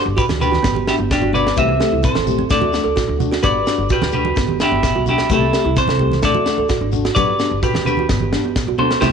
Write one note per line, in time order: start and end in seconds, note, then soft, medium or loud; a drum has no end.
0.06 0.15 G1 medium
0.17 0.24 F#4 medium
0.17 0.23 G4 medium
0.17 0.24 B4 medium
0.17 kick medium
0.17 shekere medium
0.29 0.57 D2 medium
0.29 snare medium
0.29 high conga medium
0.40 0.56 D4 soft
0.40 0.55 F#4 soft
0.40 0.47 G4 medium
0.40 0.85 G4 medium
0.40 0.88 B4 medium
0.40 low conga medium
0.40 shekere medium
0.52 0.58 F#4 medium
0.52 snare soft
0.52 high conga medium
0.63 0.92 G1 medium
0.63 0.70 B3 medium
0.63 kick medium
0.63 snare medium
0.63 shekere medium
0.75 0.82 G4 medium
0.75 high conga medium
0.87 1.03 D4 soft
0.87 0.94 E4 medium
0.87 1.02 F#4 soft
0.87 0.95 G4 medium
0.87 snare medium
0.87 shekere medium
0.98 1.18 G1 medium
0.98 1.05 B3 medium
1.11 1.33 D4 medium
1.11 1.33 G4 medium
1.11 kick medium
1.11 snare medium
1.11 shekere medium
1.22 1.50 G1 medium
1.22 1.29 F#4 medium
1.33 1.40 B3 medium
1.33 1.49 D4 soft
1.33 1.48 F#4 medium
1.33 1.56 B4 medium
1.33 1.58 D5 medium
1.33 low conga medium
1.33 shekere medium
1.47 snare medium
1.56 1.76 C2 medium
1.56 1.71 E3 medium
1.56 1.71 A3 medium
1.56 1.72 C4 medium
1.56 1.72 G4 medium
1.56 2.02 C5 medium
1.56 2.04 E5 loud
1.56 kick medium
1.56 shekere medium
1.69 1.75 C4 medium
1.80 1.96 A3 soft
1.80 1.95 C4 soft
1.80 1.95 G4 soft
1.80 1.87 A4 medium
1.80 snare medium
1.80 shekere medium
1.92 2.02 C2 medium
1.92 1.99 E4 medium
2.03 2.10 C4 medium
2.03 2.48 A4 soft
2.03 2.47 C5 medium
2.03 kick medium
2.03 snare soft
2.03 shekere medium
2.15 2.43 A1 medium
2.15 2.22 A4 medium
2.15 snare medium
2.15 high conga medium
2.26 2.42 A3 soft
2.26 2.42 C4 soft
2.26 2.41 G4 soft
2.26 low conga medium
2.26 shekere medium
2.38 2.45 C4 medium
2.38 high conga medium
2.49 2.79 D2 medium
2.49 2.64 A3 medium
2.49 2.65 D4 medium
2.49 2.65 F#4 medium
2.49 3.17 A4 medium
2.49 3.17 D5 medium
2.49 kick medium
2.49 snare medium
2.49 shekere medium
2.61 2.68 F#4 medium
2.61 high conga medium
2.72 2.89 D4 soft
2.72 2.87 F#4 soft
2.72 snare medium
2.72 shekere medium
2.84 3.04 D2 medium
2.84 2.91 A4 medium
2.96 3.03 F#4 medium
2.96 kick medium
2.96 snare medium
2.96 shekere medium
3.08 3.37 D2 medium
3.08 3.15 D4 medium
3.19 3.35 D4 soft
3.19 3.34 F#4 soft
3.19 high conga medium
3.19 low conga medium
3.19 shekere medium
3.31 3.38 F#4 medium
3.31 snare medium
3.42 3.62 G1 medium
3.42 3.57 B3 medium
3.42 3.58 D4 medium
3.42 3.58 F#4 medium
3.42 3.50 G4 medium
3.42 3.87 B4 medium
3.42 3.87 D5 loud
3.42 kick medium
3.42 shekere medium
3.67 3.82 D4 soft
3.67 3.81 F#4 soft
3.67 snare medium
3.67 shekere medium
3.78 3.88 G1 medium
3.89 3.97 F#4 medium
3.89 4.12 G4 medium
3.89 4.13 B4 medium
3.89 kick medium
3.89 shekere medium
4.02 4.30 D2 medium
4.02 snare medium
4.02 high conga medium
4.12 4.28 D4 soft
4.12 4.27 F#4 soft
4.12 4.20 G4 medium
4.12 4.57 G4 medium
4.12 4.57 B4 medium
4.12 low conga medium
4.12 shekere medium
4.25 4.32 F#4 medium
4.25 high conga medium
4.36 4.65 G1 medium
4.36 4.43 B3 medium
4.36 kick medium
4.36 snare medium
4.36 shekere medium
4.48 4.55 G4 medium
4.48 high conga medium
4.59 4.75 D4 soft
4.59 5.04 E4 medium
4.59 4.74 F#4 medium
4.59 5.05 G4 medium
4.59 snare medium
4.59 shekere medium
4.71 4.90 G1 medium
4.71 4.78 B3 medium
4.83 kick medium
4.83 snare medium
4.83 shekere medium
4.96 5.23 B1 medium
4.96 5.02 F#4 medium
5.06 5.22 D4 soft
5.06 5.29 E4 medium
5.06 5.21 F#4 soft
5.06 low conga medium
5.06 shekere medium
5.10 5.30 G4 medium
5.18 snare medium
5.29 5.48 C2 medium
5.29 5.44 E3 medium
5.29 5.44 A3 medium
5.29 5.45 C4 medium
5.29 5.74 E4 medium
5.29 5.45 G4 medium
5.29 5.76 A4 medium
5.29 kick medium
5.29 shekere medium
5.41 5.48 C4 medium
5.52 5.68 A3 soft
5.52 5.67 C4 soft
5.52 5.67 G4 soft
5.52 5.60 A4 medium
5.52 snare medium
5.52 shekere medium
5.65 5.74 C2 medium
5.65 5.72 E4 medium
5.76 5.83 C4 medium
5.76 6.20 A4 medium
5.76 6.21 C5 medium
5.76 kick medium
5.76 snare soft
5.76 shekere medium
5.88 6.15 C2 medium
5.88 5.95 A4 medium
5.88 snare medium
5.88 high conga medium
5.99 6.15 A3 soft
5.99 6.14 C4 soft
5.99 6.13 G4 soft
5.99 low conga medium
6.12 snare soft
6.12 high conga medium
6.22 6.51 D2 medium
6.22 6.37 A3 medium
6.22 6.37 D4 medium
6.22 6.89 A4 medium
6.22 6.90 D5 medium
6.22 muted nylon-string guitar stroke medium
6.22 kick medium
6.22 snare medium
6.22 shekere medium
6.34 6.41 F#4 medium
6.34 high conga medium
6.46 6.62 D4 soft
6.46 6.60 F#4 soft
6.46 snare medium
6.46 shekere medium
6.58 6.76 D2 medium
6.58 6.65 A4 medium
6.69 6.76 F#4 medium
6.69 kick medium
6.69 snare medium
6.69 shekere medium
6.81 7.09 G#1 medium
6.81 6.88 D4 medium
6.92 7.08 D4 soft
6.92 7.06 F#4 medium
6.92 low conga medium
6.92 shekere medium
7.05 7.11 F#4 medium
7.05 snare medium
7.15 7.35 G1 medium
7.15 7.30 F#3 medium
7.15 7.30 B3 medium
7.15 7.31 D4 medium
7.15 7.31 F#4 medium
7.15 7.23 G4 medium
7.15 7.59 B4 medium
7.15 7.59 D5 medium
7.15 kick medium
7.15 shekere loud
7.39 7.54 B3 soft
7.39 7.54 D4 soft
7.39 7.53 F#4 soft
7.39 snare medium
7.39 shekere medium
7.51 7.60 G1 medium
7.63 7.69 F#4 medium
7.63 7.84 G4 medium
7.63 7.84 B4 medium
7.63 kick medium
7.63 shekere medium
7.74 8.02 D2 medium
7.74 snare medium
7.74 high conga medium
7.85 8.01 B3 soft
7.85 8.00 D4 soft
7.85 7.99 F#4 soft
7.85 7.93 G4 medium
7.85 8.75 G4 medium
7.85 8.78 B4 medium
7.85 low conga medium
7.85 shekere medium
7.97 8.05 F#4 medium
7.97 high conga medium
8.09 8.37 G1 medium
8.09 8.16 B3 medium
8.09 kick medium
8.09 snare medium
8.09 shekere medium
8.20 8.28 G4 medium
8.20 high conga medium
8.32 8.47 B3 soft
8.32 8.47 D4 soft
8.32 8.46 F#4 soft
8.32 snare medium
8.32 shekere medium
8.44 8.62 G1 medium
8.44 8.51 B3 medium
8.56 kick medium
8.56 snare medium
8.56 shekere medium
8.67 8.95 B1 medium
8.67 8.74 F#4 medium
8.78 8.85 B3 medium
8.78 8.94 B3 soft
8.78 8.93 D4 soft
8.78 8.92 F#4 medium
8.78 9.00 A4 medium
8.78 8.99 C5 medium
8.78 low conga medium
8.91 snare medium
9.01 9.11 C2 medium
9.01 9.09 A3 medium
9.01 9.09 C4 medium
9.01 9.10 C4 medium
9.01 9.09 E4 medium
9.01 9.09 G4 medium
9.01 9.09 A4 medium
9.01 9.09 C5 medium
9.01 kick medium
9.01 snare medium
9.01 low conga medium
9.01 shekere medium